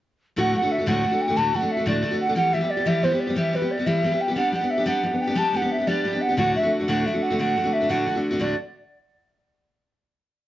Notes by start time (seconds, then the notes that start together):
0.36 D2 A2 D3 A3 D4 F#4 F#5
0.53 D3 A3 D4 F#4 F#5
0.62 D3 A3 D4 F#4
0.70 E5
0.78 D3 A3 D4 F#4
0.86 D2 A2 D3 A3 D4 F#4 F#5
1.03 D3 A3 D4 F#4
1.11 D3 A3 D4 F#4
1.20 G5
1.28 D3 A3 D4 F#4
1.36 D2 A2 D3 A3 D4 F#4 A5
1.53 D3 A3 D4 F#4 F#5
1.61 D3 A3 D4 F#4
1.71 E5
1.77 D3 A3 D4 F#4
1.86 D2 A2 D3 A3 D4 F#4 D5
2.03 D3 A3 D4 F#4
2.11 D3 A3 D4 F#4
2.20 F#5
2.28 D3 A3 D4 F#4
2.35 E3 G3 B3 G4 F#5
2.53 E3 G3 B3 G4 E5
2.61 G3 B3 G4
2.70 D5
2.77 G3 B3 G4
2.86 E3 G3 B3 G4 E5
3.03 E3 G3 B3 G4 C5
3.12 G3 B3 G4
3.20 D5
3.27 G3 B3 G4
3.36 E3 G3 B3 G4 E5
3.53 E3 G3 B3 G4 B4
3.62 G3 B3 G4
3.71 D5
3.77 G3 B3 G4
3.86 E3 G3 B3 G4 E5
4.03 E3 G3 B3 G4
4.12 G3 B3 G4
4.20 G5
4.28 G3 B3 G4
4.36 G3 B3 D4 G4 F#5
4.53 G3 B3 D4 G4 F#5
4.61 B3 D4 G4
4.70 E5
4.78 B3 D4 G4
4.86 G3 B3 D4 G4 F#5
5.03 G3 B3 D4 G4
5.11 B3 D4 G4
5.21 G5
5.27 B3 D4 G4
5.35 G3 B3 D4 G4 A5
5.53 G3 B3 D4 G4 F#5
5.62 B3 D4 G4
5.71 E5
5.78 B3 D4 G4
5.87 G3 B3 D4 G4 D5
6.05 G3 B3 D4 G4
6.13 B3 D4 G4
6.21 F#5
6.29 B3 D4 G4
6.37 D2 A2 D3 A3 D4 F#4 F#5
6.54 D3 A3 D4 F#4 E5
6.63 D3 A3 D4 F#4
6.79 D3 A3 D4 F#4
6.87 D2 A2 D3 A3 D4 F#4 F#5
7.05 D3 A3 D4 F#4 E5
7.14 D3 A3 D4 F#4
7.22 F#5
7.30 D3 A3 D4 F#4
7.39 D2 A2 D3 A3 D4 F#4 F#5
7.55 D3 A3 D4 F#4
7.63 D3 A3 D4 F#4
7.72 E5
7.80 D3 A3 D4 F#4
7.89 D2 A2 D3 A3 D4 F#4 F#5
8.06 D3 A3 D4 F#4
8.15 D3 A3 D4 F#4
8.30 D3 A3 D4 F#4
8.39 D2 A2 D3 A3 D4 F#4 D5